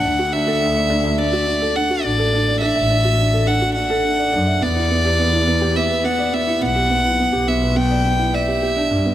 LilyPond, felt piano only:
\new Staff \with { instrumentName = "Felt piano" } { \time 4/4 \key e \dorian \tempo 4 = 105 d'16 fis'16 d'16 a'16 d'16 d''16 d'16 e''16 d'16 fis'16 d'16 a'16 d'16 fis'16 d'16 a'16 | d'16 d''16 d'16 e''16 d'16 fis'16 d'16 a'16 d'16 fis'16 d'16 a'16 d'16 d''16 d'16 e''16 | b16 e'16 b16 g'16 b16 e'16 b16 g'16 b16 b'16 b16 d''16 b16 e'16 b16 g'16 | b16 e'16 b16 g'16 b16 b'16 b16 d''16 b16 e'16 d''16 g'16 g'16 d'16 d'16 b16 | }